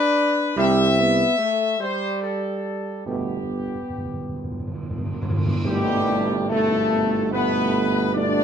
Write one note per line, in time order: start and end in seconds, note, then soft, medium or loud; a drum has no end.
0.00 0.56 D4 loud
0.00 0.53 B4 loud
0.56 1.25 C2 loud
0.56 0.87 C3 loud
0.56 0.87 G3 loud
0.56 0.95 C4 loud
0.56 1.76 E5 loud
0.98 1.39 B3 loud
1.38 1.76 A3 loud
1.79 3.01 G3 loud
1.79 2.21 C5 loud
2.21 3.02 A4 medium
3.05 3.77 G1 medium
3.05 3.12 G2 soft
3.05 3.38 B2 medium
3.05 3.38 A3 medium
3.05 5.17 B3 medium
3.05 4.77 G4 medium
3.13 3.20 G2 soft
3.21 3.27 G2 soft
3.28 3.35 G2 soft
3.36 3.42 G2 soft
3.43 3.50 G2 soft
3.51 3.58 G2 medium
3.59 3.65 G2 soft
3.67 3.73 G2 soft
3.75 3.81 G2 medium
3.82 3.88 G2 medium
3.90 3.96 G2 medium
3.98 4.04 G2 medium
4.05 4.12 G2 medium
4.13 4.20 G2 medium
4.21 4.27 G2 medium
4.29 4.35 G2 medium
4.36 4.43 G2 medium
4.44 4.50 G2 medium
4.52 4.58 G2 medium
4.59 4.66 G2 medium
4.67 4.74 G2 medium
4.75 4.82 G2 medium
4.83 4.89 G2 medium
4.90 4.97 G2 medium
4.98 5.05 G2 medium
5.06 5.13 G2 medium
5.14 5.21 G2 loud
5.22 5.29 G2 loud
5.30 5.37 G2 loud
5.38 5.45 G2 loud
5.46 5.52 G2 loud
5.54 5.61 G2 loud
5.64 8.44 G1 medium
5.64 6.86 G2 loud
5.64 6.45 B2 loud
5.64 6.45 G3 loud
5.64 6.45 A3 medium
5.64 6.45 G4 loud
5.64 tam-tam medium
6.49 7.28 B2 medium
6.49 7.28 A3 loud
6.49 7.28 A4 loud
7.31 8.10 B2 medium
7.31 8.10 A3 medium
7.31 8.10 B3 loud
7.31 8.10 B4 loud
8.14 8.44 B2 loud
8.14 8.44 A3 loud
8.14 8.44 D4 loud
8.14 8.44 D5 loud